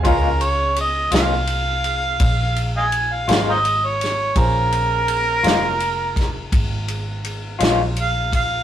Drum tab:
RD |xxxxxxxxxxxx|xxxxxxxxxxxx|
SD |---o-----o-o|---o-o---o--|
BD |o-----o-----|o----oo----o|